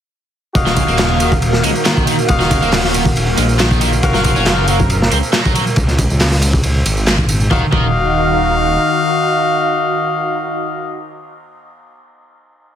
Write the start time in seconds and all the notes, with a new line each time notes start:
0.54 D#1 D#3 A#3 F#4 D#5 F5, kick, ride, tambourine
0.66 D#3, snare, tambourine
0.76 C#3, kick, ride, tambourine
0.88 D#1 A#3, tambourine
0.98 C#3, snare, clap, ride, tambourine
1.20 D#3 F#4 D#5 F5, ride, tambourine
1.32 kick, tambourine
1.42 ride, tambourine
1.53 snare
1.63 C#2 G#3, ride, tambourine
1.75 tambourine
1.85 D#3, snare, clap, ride, tambourine
1.97 kick, tambourine
2.07 D#3, ride, tambourine
2.19 tambourine
2.28 D#1 F#4 D#5 F5, kick, ride, tambourine
2.40 D#3, snare, tambourine
2.50 C#3, kick, ride, tambourine
2.62 D#1 A#3, tambourine
2.72 C#3, snare, clap, open hi-hat, tambourine
2.84 snare
2.94 D#3, ride, tambourine
3.06 kick, tambourine
3.16 D#1, ride, tambourine
3.38 A#1 G#3, ride, tambourine
3.49 tambourine
3.59 D#3, snare, clap, ride, tambourine
3.71 kick, tambourine
3.81 D#3, ride, tambourine
3.93 tambourine
4.03 F#1 F#4 A#4 F5, kick, ride, tambourine
4.14 F#3, snare, tambourine
4.24 F3, kick, ride, tambourine
4.36 F#1 C#4, tambourine
4.46 F3, snare, clap, ride, tambourine
4.68 F#3 F#4 A#4 F5, ride, tambourine
4.79 kick, tambourine
4.90 ride, tambourine
5.02 snare
5.12 C#2 C4, ride, tambourine
5.23 tambourine
5.33 F#3, snare, clap, ride, tambourine
5.45 kick, tambourine
5.55 F#3, ride, tambourine
5.67 tambourine
5.76 C#2, kick, ride, tambourine
5.88 snare, tambourine
5.98 kick, ride, tambourine
6.10 C#2, tambourine
6.20 snare, clap, open hi-hat, tambourine
6.32 snare, tambourine
6.42 ride, tambourine
6.53 kick, tambourine
6.63 C#2, ride, tambourine
6.86 G#1, ride, tambourine
6.97 tambourine
7.07 snare, clap, ride, tambourine
7.18 kick, tambourine
7.29 ride, tambourine
7.40 tambourine
7.50 D#1 D#3 D#4 F#4 D#5 F5, kick
7.72 D#1 D#3 F#4 D#5 F5, kick